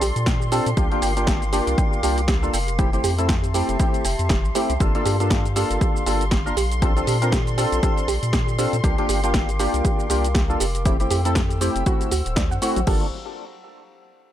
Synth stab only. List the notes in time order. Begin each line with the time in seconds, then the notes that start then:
0.52 C4 D4 F4 A4
0.77 A#3 D4 F4 G4
0.92 A#3 D4 F4 G4
1.17 A#3 D4 F4 G4
1.53 A#3 D4 F4 G4
2.03 A#3 D4 F4 G4
2.43 A#3 D4 F4 A4
2.79 A3 C4 E4 G4
2.93 A3 C4 E4 G4
3.19 A3 C4 E4 A4
3.54 A3 C4 E4 G4
3.80 A3 C4 E4 G4
4.55 A3 C4 E4 G4
4.80 A#3 D4 F4 A4
4.95 A#3 D4 F4 A4
5.20 A#3 D4 F4 A4
5.56 A#3 D4 F4 A4
6.06 A#3 D4 F4 A4
6.46 A#3 D4 F4 A#4
6.82 C4 D4 F4 A4
6.96 C4 D4 F4 A4
7.22 C4 D4 F4 A#4
7.58 C4 D4 F4 A4
7.83 C4 D4 F4 A4
8.59 C4 D4 F4 A4
8.84 A#3 D4 F4 G4
8.98 A#3 D4 F4 G4
9.24 A#3 D4 F4 G4
9.59 A#3 D4 F4 G4
10.10 A#3 D4 F4 G4
10.50 A#3 D4 F4 A4
10.86 A3 C4 E4 G4
11.00 A3 C4 E4 G4
11.25 A3 C4 E4 A4
11.61 A3 C4 E4 G4
11.86 A3 C4 E4 F#4
12.62 A3 C4 E4 F#4
12.87 A#3 D4 F4 A4